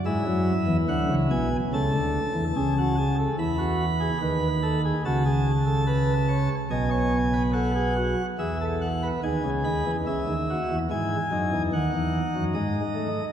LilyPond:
<<
  \new Staff \with { instrumentName = "Pipe organ" } { \time 4/4 \key e \mixolydian \tempo 4 = 72 << { e''4 fis''8 gis''8 a''2 | b''2 a''2 | gis''4 fis''4 e''8 fis''8 gis''8 b''8 | e''4 gis''4 fis''4 dis''4 | } \\ { e'2 a'4 gis'16 fis'16 gis'16 a'16 | e'16 fis'8 gis'16 b'8 a'16 gis'16 fis'16 gis'8 a'16 b'8 cis''8 | dis''16 cis''8 b'16 a'16 gis'16 fis'8 gis'16 a'8 b'16 gis'4 | gis'8 fis'8 e'8 dis'2~ dis'8 | } >> }
  \new Staff \with { instrumentName = "Pipe organ" } { \clef bass \time 4/4 \key e \mixolydian <gis, gis>16 <fis, fis>8 <e, e>16 <d, d>16 <cis, cis>16 <b,, b,>8 <cis, cis>16 <d, d>8 <e, e>16 <cis, cis>4 | <e, e>4 <dis, dis>4 <cis, cis>2 | <b,, b,>2 <e, e>4 <dis, dis>16 <cis, cis>16 <dis, dis>16 <e, e>16 | <cis, cis>16 <dis, dis>8 <e, e>16 <gis, gis>8 <fis, fis>16 <e, e>16 <dis, dis>16 <e, e>8 <fis, fis>16 <gis, gis>8 a8 | }
>>